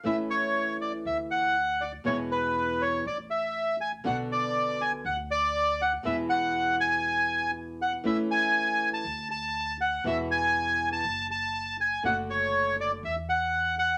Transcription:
<<
  \new Staff \with { instrumentName = "Bandoneon" } { \time 4/4 \key a \major \tempo 4 = 120 e''8 cis''4 d''8 e''8 fis''4 d''8 | cis''8 b'4 cis''8 d''8 e''4 gis''8 | fis''8 d''4 gis''8 fis''8 d''4 fis''8 | e''8 fis''4 gis''4. r8 fis''8 |
e''8 gis''4~ gis''16 a''8. a''4 fis''8 | e''8 gis''4~ gis''16 a''8. a''4 gis''8 | fis''8 cis''4 d''8 e''8 fis''4 fis''8 | }
  \new Staff \with { instrumentName = "Nylon-string guitar" } { \time 4/4 \key a \major <e a cis' e'>2 r2 | <b, e gis b e'>2 r2 | <b, d b d' fis'>2 r2 | <b, e gis b e'>1 |
<e a cis' e'>2 r2 | <b, e gis b fis'>2 r2 | <d a d' fis'>2 r2 | }
  \new Staff \with { instrumentName = "Upright bass" } { \clef bass \time 4/4 \key a \major a,,2 d,2 | e,2 a,,2 | b,,2 d,2 | e,1 |
a,,2 d,2 | e,2 fis,,2 | fis,,2 e,2 | }
>>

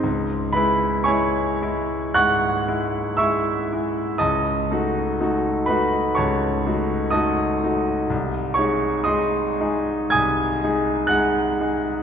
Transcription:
\new Staff \with { instrumentName = "Grand piano" } { \time 4/4 \key cis \minor \tempo 4 = 61 << { r8 <b' b''>8 <cis'' gis'' cis'''>4 <fis'' cis''' fis'''>4 <e'' cis''' e'''>4 | <dis'' a'' dis'''>4. <b' b''>8 <cis'' a'' cis'''>4 <dis'' a'' dis'''>4 | r8 <cis'' cis'''>8 <dis'' bis'' dis'''>4 <gis'' dis''' gis'''>4 <fis'' fis'''>4 | } \\ { cis,8 <gis e'>8 <gis e'>8 <gis e'>8 gis,8 <gis e'>8 <gis e'>8 <gis e'>8 | cis,8 <a dis' fis'>8 <a dis' fis'>8 <a dis' fis'>8 cis,8 <a dis' fis'>8 <a dis' fis'>8 <a dis' fis'>8 | bis,,8 <gis dis' gis'>8 <gis dis' gis'>8 <gis dis' gis'>8 bis,,8 <gis dis' gis'>8 <gis dis' gis'>8 <gis dis' gis'>8 | } >> }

